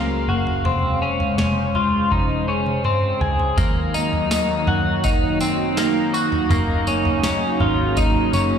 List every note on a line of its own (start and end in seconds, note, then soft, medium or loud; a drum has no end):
0.00 0.27 C#2 medium
0.00 3.54 C#3 medium
0.00 0.61 F#3 medium
0.00 0.29 A#3 medium
0.00 0.62 A#3 medium
0.00 3.53 F5 medium
0.28 0.63 F#1 medium
0.28 0.65 F#4 medium
0.47 floor tom medium
0.65 1.34 F1 medium
0.65 3.55 G#3 medium
0.65 1.02 C4 medium
0.65 3.55 C5 medium
0.65 floor tom medium
1.02 1.37 C#4 medium
1.20 floor tom medium
1.38 2.07 F1 medium
1.38 1.75 C#4 medium
1.38 snare medium
1.75 2.12 F4 medium
1.75 floor tom medium
2.12 3.17 F1 medium
2.12 2.48 D#4 medium
2.12 kick medium
2.12 high tom soft
2.30 high tom soft
2.48 2.85 C#4 medium
2.66 mid tom soft
2.84 3.21 C4 medium
2.84 mid tom medium
3.21 3.56 C#2 medium
3.21 3.58 G#4 medium
3.21 floor tom medium
3.39 floor tom medium
3.57 4.45 D#2 loud
3.57 6.47 D#3 medium
3.57 6.48 F#3 medium
3.57 8.59 A#3 medium
3.57 3.94 A#3 medium
3.57 8.59 D#4 medium
3.57 kick medium
3.57 floor tom medium
3.57 tambourine medium
3.94 4.30 D#4 medium
3.94 tambourine medium
4.13 floor tom medium
4.31 4.68 D#4 medium
4.31 snare loud
4.31 tambourine medium
4.67 6.46 F#2 medium
4.67 5.04 F#4 medium
4.67 floor tom medium
5.04 5.41 D#4 medium
5.04 kick loud
5.04 floor tom medium
5.04 tambourine medium
5.41 5.77 C4 medium
5.41 tambourine medium
5.77 6.14 A#3 medium
5.77 snare loud
5.77 tambourine medium
6.14 6.50 F#4 medium
6.14 tambourine medium
6.32 floor tom medium
6.50 7.38 F#1 loud
6.50 8.59 C#3 medium
6.50 8.59 F#3 medium
6.50 6.87 A#3 medium
6.50 floor tom medium
6.50 tambourine medium
6.87 7.23 C#4 medium
6.87 tambourine medium
7.05 floor tom medium
7.24 7.60 C#4 medium
7.24 snare loud
7.24 tambourine medium
7.60 8.30 G#1 medium
7.60 7.97 F4 medium
7.60 floor tom medium
7.97 8.33 D#4 medium
7.97 kick medium
7.97 floor tom medium
7.97 tambourine medium
8.33 8.59 F#1 loud
8.33 8.59 C#4 medium
8.33 tambourine medium